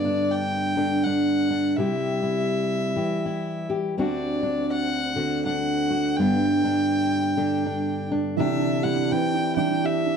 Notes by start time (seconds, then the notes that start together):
Already playing: G2 D3 B3 D5
0.05 D4
0.31 G5
0.77 D3 D4
1.04 D4 F#5
1.51 D4
1.76 C3 G3 E4 G4 E5
2.23 E4
2.96 E3 G4
3.26 E4
3.70 G4
3.98 D2 C4 D4 F#4 D5
4.43 D4
4.72 F#5
5.16 D3 F#4
5.45 D4 F#5
5.90 F#4
6.17 G2 B3 D4 G5
6.64 D4
7.37 D3 D4
7.66 D4
8.11 D4
8.37 C3 E3 D4 E5
8.60 D4
8.82 E4 G4 F#5
8.96 D4
9.11 E3 C4 G5
9.34 D4
9.56 E3 D4 G5
9.70 D4
9.84 G4 E5
10.05 D4